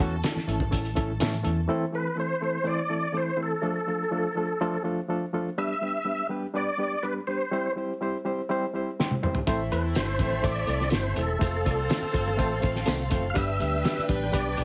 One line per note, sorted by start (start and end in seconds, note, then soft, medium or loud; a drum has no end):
0.00 0.21 E2 loud
0.00 0.15 E3 loud
0.00 0.15 A3 loud
0.00 0.15 C#4 loud
0.00 0.15 E4 loud
0.00 0.15 F#4 loud
0.00 1.65 A4 medium
0.00 1.65 A5 loud
0.00 kick medium
0.24 0.39 E3 loud
0.24 0.39 A3 medium
0.24 0.39 C#4 medium
0.24 0.39 E4 medium
0.24 0.40 A4 loud
0.24 snare loud
0.24 closed hi-hat medium
0.24 tambourine loud
0.36 muted fingered electric bass stroke soft
0.36 snare soft
0.47 0.69 G#1 medium
0.47 0.63 E3 medium
0.47 0.63 A3 medium
0.47 0.63 C#4 medium
0.47 0.64 E4 medium
0.47 0.64 A4 loud
0.47 closed hi-hat medium
0.60 kick loud
0.60 high conga medium
0.60 low conga medium
0.71 0.94 A1 medium
0.71 0.87 E3 medium
0.71 0.87 A3 medium
0.71 0.87 C#4 medium
0.71 0.87 E4 medium
0.71 0.88 A4 loud
0.71 kick medium
0.71 closed hi-hat medium
0.71 tambourine medium
0.71 muted conga soft
0.85 closed hi-hat medium
0.95 1.18 A1 medium
0.95 1.11 E3 medium
0.95 1.11 A3 medium
0.95 1.11 C#4 medium
0.95 1.12 E4 medium
0.95 1.12 A4 loud
0.95 kick loud
0.95 closed hi-hat medium
1.10 high conga medium
1.20 1.42 A2 loud
1.20 1.36 E3 loud
1.20 1.36 A3 loud
1.20 1.36 C#4 loud
1.20 1.36 E4 loud
1.20 1.36 A4 loud
1.20 snare loud
1.20 closed hi-hat medium
1.20 tambourine loud
1.20 high conga medium
1.34 closed hi-hat medium
1.43 1.66 E2 medium
1.43 1.59 E3 medium
1.43 1.59 A3 medium
1.43 1.59 C#4 medium
1.43 1.60 E4 medium
1.43 1.60 A4 loud
1.43 closed hi-hat medium
1.43 muted conga soft
1.43 low conga medium
1.57 high conga medium
1.68 1.84 E3 loud
1.68 1.84 A3 loud
1.68 1.84 C4 loud
1.68 1.84 E4 loud
1.68 1.85 A4 loud
1.92 2.08 E3 medium
1.92 2.08 A3 medium
1.92 2.08 C4 medium
1.92 2.09 E4 medium
1.92 2.09 A4 medium
1.92 2.17 B4 medium
2.16 2.32 E3 medium
2.16 2.32 A3 medium
2.16 2.33 C4 medium
2.16 2.33 E4 medium
2.16 2.33 A4 medium
2.20 2.42 C5 loud
2.40 2.56 E3 medium
2.40 2.57 A3 medium
2.40 2.57 C4 medium
2.40 2.57 E4 medium
2.40 2.57 A4 medium
2.40 2.68 C5 loud
2.64 2.80 E3 medium
2.64 2.81 A3 medium
2.64 2.80 C4 medium
2.64 2.81 E4 medium
2.64 2.81 C5 loud
2.64 3.17 D5 loud
2.89 3.05 E3 medium
2.89 3.05 A3 medium
2.89 3.05 C4 medium
2.89 3.05 E4 medium
2.89 3.06 A4 medium
3.12 3.29 E3 medium
3.12 3.29 A3 medium
3.12 3.29 C4 medium
3.12 3.30 E4 medium
3.12 3.30 A4 medium
3.17 3.41 C5 loud
3.36 3.53 E3 medium
3.36 3.53 A3 medium
3.36 3.53 C4 medium
3.36 3.53 E4 medium
3.36 3.53 A4 medium
3.43 4.83 A4 medium
3.62 3.78 F3 loud
3.62 3.78 A3 loud
3.62 3.78 D4 medium
3.62 3.78 F4 medium
3.62 3.79 A4 loud
3.87 4.03 F3 medium
3.87 4.03 A3 medium
3.87 4.03 D4 medium
3.87 4.03 F4 medium
3.87 4.03 A4 medium
4.11 4.27 F3 medium
4.11 4.27 A3 medium
4.11 4.27 D4 medium
4.11 4.27 F4 medium
4.11 4.27 A4 loud
4.35 4.51 F3 medium
4.35 4.51 A3 medium
4.35 4.52 D4 medium
4.35 4.52 F4 medium
4.35 4.52 A4 loud
4.61 4.76 F3 loud
4.61 4.76 A3 loud
4.61 4.76 D4 loud
4.61 4.76 F4 loud
4.61 4.76 A4 loud
4.84 5.00 F3 medium
4.84 5.00 A3 medium
4.84 5.00 D4 medium
4.84 5.00 F4 medium
4.84 5.00 A4 loud
5.08 5.24 F3 loud
5.08 5.24 A3 medium
5.08 5.25 D4 medium
5.08 5.25 F4 medium
5.08 5.25 A4 loud
5.33 5.48 F3 medium
5.33 5.49 A3 medium
5.33 5.49 D4 medium
5.33 5.49 F4 medium
5.33 5.49 A4 loud
5.58 5.73 G3 loud
5.58 5.73 B3 medium
5.58 5.73 D4 loud
5.58 5.73 G4 medium
5.58 5.74 B4 loud
5.58 6.27 E5 loud
5.81 5.97 G3 medium
5.81 5.97 B3 medium
5.81 5.97 D4 medium
5.81 5.98 G4 medium
5.81 5.98 B4 medium
6.05 6.21 G3 medium
6.05 6.21 B3 medium
6.05 6.21 D4 medium
6.05 6.22 G4 medium
6.05 6.22 B4 medium
6.29 6.45 G3 medium
6.29 6.46 B3 medium
6.29 6.46 D4 medium
6.29 6.46 G4 medium
6.29 6.46 B4 loud
6.54 6.70 G3 loud
6.54 6.70 B3 medium
6.54 6.70 D4 medium
6.54 6.70 G4 medium
6.54 6.71 B4 loud
6.54 7.06 D5 loud
6.78 6.94 G3 medium
6.78 6.94 B3 medium
6.78 6.94 D4 medium
6.78 6.95 G4 medium
6.78 6.95 B4 medium
7.03 7.19 G3 medium
7.03 7.19 B3 medium
7.03 7.19 D4 medium
7.03 7.19 G4 medium
7.03 7.14 B4 medium
7.03 7.20 B4 medium
7.27 7.43 G3 medium
7.27 7.44 B3 medium
7.27 7.43 D4 medium
7.27 7.44 G4 medium
7.27 7.44 B4 medium
7.27 7.73 C5 medium
7.51 7.67 G3 loud
7.51 7.68 C4 loud
7.51 7.68 E4 loud
7.51 7.68 G4 loud
7.51 7.68 C5 loud
7.76 7.91 G3 medium
7.76 7.92 C4 medium
7.76 7.92 E4 medium
7.76 7.93 G4 medium
7.76 7.93 C5 medium
8.01 8.16 G3 medium
8.01 8.16 C4 medium
8.01 8.17 E4 medium
8.01 8.17 G4 medium
8.01 8.17 C5 loud
8.24 8.40 G3 medium
8.24 8.41 C4 medium
8.24 8.41 E4 medium
8.24 8.41 G4 medium
8.24 8.41 C5 loud
8.49 8.65 G3 loud
8.49 8.65 C4 loud
8.49 8.65 E4 loud
8.49 8.65 G4 loud
8.49 8.66 C5 loud
8.74 8.89 G3 medium
8.74 8.89 C4 medium
8.74 8.90 E4 medium
8.74 8.90 G4 medium
8.74 8.90 C5 loud
8.99 9.14 G3 loud
8.99 9.14 C4 medium
8.99 9.15 E4 medium
8.99 9.15 G4 medium
8.99 9.15 C5 loud
8.99 snare medium
9.11 high tom medium
9.23 9.38 G3 medium
9.23 9.38 C4 medium
9.23 9.38 E4 medium
9.23 9.38 G4 medium
9.23 9.38 C5 loud
9.23 mid tom loud
9.35 floor tom loud
9.46 9.69 A1 loud
9.46 11.13 A3 medium
9.46 9.62 A3 loud
9.46 11.13 C4 medium
9.46 9.62 C4 loud
9.46 11.38 C4 medium
9.46 11.13 E4 loud
9.46 9.62 E4 loud
9.46 11.38 A4 medium
9.46 9.63 A4 loud
9.46 9.63 C5 loud
9.46 11.38 E5 loud
9.46 kick loud
9.46 closed hi-hat loud
9.46 tambourine medium
9.71 9.93 E2 medium
9.71 9.87 A3 medium
9.71 9.87 C4 medium
9.71 9.87 E4 medium
9.71 9.87 A4 medium
9.71 9.83 B4 medium
9.71 9.87 C5 medium
9.71 closed hi-hat medium
9.95 10.17 G1 medium
9.95 10.11 A3 medium
9.95 10.11 C4 medium
9.95 10.11 E4 medium
9.95 10.11 A4 medium
9.95 10.46 C5 loud
9.95 10.11 C5 medium
9.95 snare loud
9.95 closed hi-hat medium
9.95 tambourine medium
10.19 10.41 A1 medium
10.19 10.35 A3 medium
10.19 10.35 C4 medium
10.19 10.35 E4 medium
10.19 10.35 A4 medium
10.19 10.35 B4 medium
10.19 kick loud
10.19 closed hi-hat medium
10.19 muted conga soft
10.19 high conga medium
10.32 high conga medium
10.32 low conga medium
10.42 10.65 A1 loud
10.42 10.59 A3 medium
10.42 10.59 C4 medium
10.42 10.59 E4 medium
10.42 10.59 A4 medium
10.42 10.59 C5 loud
10.42 10.89 D5 loud
10.42 kick medium
10.42 closed hi-hat medium
10.42 tambourine medium
10.42 muted conga soft
10.67 10.89 C2 medium
10.67 10.83 A3 medium
10.67 10.83 C4 medium
10.67 10.83 E4 medium
10.67 10.84 A4 medium
10.67 10.84 C5 medium
10.67 closed hi-hat medium
10.67 muted conga soft
10.80 snare soft
10.80 high conga medium
10.90 11.14 G1 loud
10.90 11.07 A3 medium
10.90 11.07 C4 medium
10.90 11.07 E4 medium
10.90 11.07 A4 medium
10.90 11.07 C5 medium
10.90 snare loud
10.90 closed hi-hat medium
10.90 tambourine loud
10.90 high conga medium
10.95 11.17 C5 loud
11.15 11.38 E1 medium
11.15 11.31 A3 medium
11.15 11.32 C4 medium
11.15 11.32 E4 medium
11.15 11.32 A4 medium
11.15 12.60 A4 medium
11.15 11.32 C5 medium
11.15 closed hi-hat medium
11.15 low conga medium
11.28 high conga medium
11.39 11.62 F1 medium
11.39 11.55 A3 loud
11.39 11.56 C4 medium
11.39 13.32 C4 medium
11.39 11.56 F4 medium
11.39 13.08 F4 medium
11.39 11.56 A4 medium
11.39 13.32 A4 medium
11.39 13.08 A4 medium
11.39 11.56 C5 loud
11.39 13.08 C5 loud
11.39 13.32 F5 loud
11.39 kick loud
11.39 closed hi-hat loud
11.39 tambourine medium
11.65 11.87 C2 medium
11.65 11.80 A3 medium
11.65 11.81 C4 medium
11.65 11.81 F4 medium
11.65 11.81 A4 medium
11.65 11.81 D5 medium
11.65 kick medium
11.65 closed hi-hat medium
11.65 muted conga soft
11.89 12.05 A3 loud
11.89 12.05 C4 medium
11.89 12.06 F4 medium
11.89 12.06 A4 medium
11.89 12.06 C5 loud
11.89 snare loud
11.89 closed hi-hat medium
11.89 tambourine loud
12.02 muted fingered electric bass stroke soft
12.13 12.36 G1 loud
12.13 12.29 A3 medium
12.13 12.29 C4 medium
12.13 12.29 F4 medium
12.13 12.29 A4 medium
12.13 12.29 C5 loud
12.13 kick loud
12.13 closed hi-hat medium
12.27 high conga medium
12.27 low conga medium
12.37 12.60 A1 medium
12.37 12.53 A3 loud
12.37 12.53 C4 loud
12.37 12.53 F4 loud
12.37 12.54 A4 loud
12.37 12.54 C5 loud
12.37 kick loud
12.37 closed hi-hat loud
12.37 tambourine medium
12.37 muted conga soft
12.61 12.84 A1 medium
12.61 12.77 A3 medium
12.61 12.78 C4 medium
12.61 12.78 F4 medium
12.61 12.78 A4 medium
12.61 12.78 C5 loud
12.61 kick loud
12.61 closed hi-hat medium
12.75 snare soft
12.75 high conga medium
12.86 13.09 C2 loud
12.86 13.02 A3 loud
12.86 13.02 C4 medium
12.86 13.02 F4 medium
12.86 13.02 A4 medium
12.86 13.03 C5 loud
12.86 snare loud
12.86 closed hi-hat medium
12.86 tambourine loud
12.86 muted conga soft
12.86 high conga medium
13.10 13.33 F#1 medium
13.10 13.26 A3 medium
13.10 13.26 C4 medium
13.10 13.27 F4 medium
13.10 13.27 A4 medium
13.10 13.27 C5 loud
13.10 kick medium
13.10 closed hi-hat medium
13.10 muted conga soft
13.10 low conga medium
13.24 high conga medium
13.30 13.50 G3 loud
13.30 13.37 F5 medium
13.35 13.57 G1 loud
13.35 13.51 B3 medium
13.35 13.51 D4 loud
13.35 14.64 D4 medium
13.35 14.64 D4 loud
13.35 13.51 G4 loud
13.35 14.64 G4 medium
13.35 14.64 B4 loud
13.35 14.64 B4 medium
13.35 13.51 B4 loud
13.35 14.05 E5 loud
13.35 14.64 G5 loud
13.35 kick loud
13.35 closed hi-hat loud
13.35 tambourine medium
13.59 13.82 D2 medium
13.59 13.75 G3 medium
13.59 13.75 B3 medium
13.59 13.75 D4 medium
13.59 13.76 G4 medium
13.59 13.76 B4 medium
13.59 closed hi-hat medium
13.59 muted conga soft
13.84 13.99 G3 medium
13.84 14.00 B3 medium
13.84 14.00 D4 medium
13.84 14.00 G4 medium
13.84 14.00 B4 medium
13.84 snare loud
13.84 closed hi-hat medium
13.84 tambourine loud
13.98 muted fingered electric bass stroke soft
13.98 snare soft
14.09 14.30 A1 medium
14.09 14.24 G3 loud
14.09 14.24 B3 medium
14.09 14.24 D4 medium
14.09 14.24 G4 medium
14.09 14.25 B4 loud
14.09 kick loud
14.09 closed hi-hat medium
14.09 high conga medium
14.22 high conga medium
14.22 low conga medium
14.32 14.55 B1 loud
14.32 14.48 G3 loud
14.32 14.48 B3 medium
14.32 14.48 D4 medium
14.32 14.48 G4 loud
14.32 14.48 B4 loud
14.32 14.64 D5 medium
14.32 kick loud
14.32 closed hi-hat loud
14.32 tambourine medium
14.57 14.64 B1 loud
14.57 14.64 G3 medium
14.57 14.64 B3 medium
14.57 14.64 D4 medium
14.57 14.64 G4 medium
14.57 14.64 B4 medium
14.57 closed hi-hat medium
14.57 muted conga soft